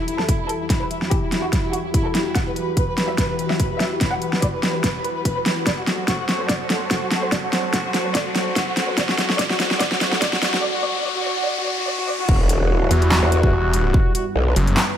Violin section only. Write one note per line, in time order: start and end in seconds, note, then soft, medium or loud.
0.08 0.17 E4 medium
0.19 0.26 A4 medium
0.29 0.37 E4 medium
0.40 0.47 E4 medium
0.49 0.58 A4 medium
0.61 0.68 E4 medium
0.70 0.79 E4 medium
0.81 0.89 B4 medium
0.91 0.99 E4 medium
1.02 1.09 E4 medium
1.11 1.20 G4 medium
1.23 1.30 E4 medium
1.32 1.41 E4 medium
1.43 1.50 F#4 medium
1.53 1.61 E4 medium
1.64 1.71 E4 medium
1.73 1.82 F#4 medium
1.85 1.92 E4 medium
1.94 2.03 E4 medium
2.05 2.13 A4 medium
2.15 2.23 E4 medium
2.26 2.33 E4 medium
2.35 2.44 F#5 loud
2.47 2.54 B4 medium
2.56 2.65 B4 medium
2.77 2.85 B4 medium
2.88 2.95 B4 medium
2.97 3.06 B4 medium
3.09 3.16 E5 medium
3.18 3.27 B4 medium
3.29 3.37 B4 medium
3.39 3.48 B4 medium
3.50 3.57 E5 medium
3.60 3.68 B4 medium
3.71 3.78 B4 medium
3.80 3.89 E5 medium
3.92 3.99 B4 medium
4.01 4.10 B4 medium
4.12 4.20 F#5 medium
4.22 4.30 B4 medium
4.33 4.40 B4 medium
4.42 4.51 D5 medium
4.54 4.61 B4 medium
4.63 4.72 B4 medium
4.74 4.82 B4 medium
4.84 4.92 B4 medium
4.95 5.02 B4 medium
5.04 5.13 B4 medium
5.16 5.23 B4 medium
5.25 5.34 B4 medium
5.37 5.44 B4 medium
5.46 5.55 B4 medium
5.57 5.64 B4 medium
5.67 5.75 D5 medium
5.78 5.85 F#4 medium
5.87 5.96 F#4 medium
6.08 6.17 F#4 medium
6.19 6.27 F#4 medium
6.29 6.37 F#4 medium
6.40 6.47 C5 medium
6.49 6.58 D5 medium
6.61 6.68 F#4 medium
6.70 6.79 F#4 medium
6.91 6.99 F#4 medium
7.02 7.09 F#4 medium
7.11 7.20 F#4 medium
7.23 7.30 C5 medium
7.32 7.41 D5 medium
7.43 7.51 F#4 medium
7.53 7.61 F#4 medium
7.73 7.82 F#4 medium
7.85 7.92 F#4 medium
7.94 8.03 F#4 medium
8.05 8.13 C5 medium
8.15 8.23 D5 loud
8.26 8.33 F#4 medium
8.35 8.44 F#4 medium
8.56 8.65 F#4 medium
8.67 8.75 F#4 medium
8.77 8.86 F#4 medium
8.88 8.95 C5 medium
8.97 9.06 D5 medium
9.09 9.16 F#4 medium
9.18 9.27 F#4 medium
9.39 9.48 D5 loud
9.50 9.57 F#4 medium
9.60 9.68 F#4 medium
9.80 9.89 D5 loud
9.92 9.99 F#4 medium
10.01 10.10 F#4 medium
10.22 10.30 D5 loud
10.33 10.40 F#4 medium
10.43 10.51 F#4 medium
10.63 10.72 D5 loud
10.74 10.82 F#4 medium
10.84 10.92 D5 loud
10.95 11.02 F#4 medium
11.04 11.13 D5 loud
11.16 11.23 F#4 medium
11.25 11.34 D5 loud
11.36 11.44 F#4 medium
11.46 11.54 D5 loud
11.57 11.64 F#4 medium
11.66 11.75 D5 loud
11.78 11.85 F#4 medium
11.87 11.96 D5 loud
11.98 12.06 F#4 medium
12.08 12.16 D5 loud
12.19 12.26 F#4 medium